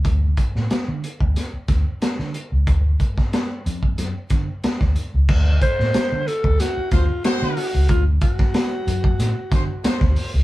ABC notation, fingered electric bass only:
X:1
M:4/4
L:1/16
Q:1/4=92
K:Dmix
V:1 name="Fingered electric bass" clef=bass
D,,2 z A,, z D, z D,, z2 D,, z2 D, z ^C,, | D,,2 z4 =F,,2 ^F,, z D, z2 D,, z ^C,, | D,,2 z A,, z D, z D,, z2 D,, z2 D, z ^C,, | D,,2 z4 F,,2 A,, z D, z2 D,, z ^C,, |]